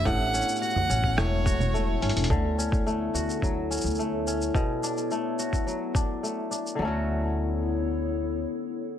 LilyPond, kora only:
\new Staff \with { instrumentName = "Kora" } { \time 4/4 \key d \major \tempo 4 = 107 a,8 cis'8 fis'8 cis'8 a,8 fis'8 a8 cis'8 | d8 cis'8 a8 fis'8 fis8 cis'8 a8 cis'8 | b,8 d'8 a8 fis'8 fis8 d'8 a8 d'8 | <d fis a cis' fis'>1 | }